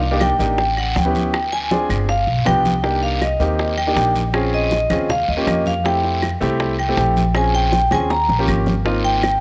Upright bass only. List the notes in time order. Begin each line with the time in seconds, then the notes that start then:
Already playing: C2
0.39 A1
0.96 D2
1.89 G1
2.27 B1
2.46 C2
3.40 D#2
3.96 A#1
4.90 D#2
5.28 D#2
5.47 F2
6.41 C2
6.97 A#1
7.91 D#2
8.29 A#1
8.47 G#1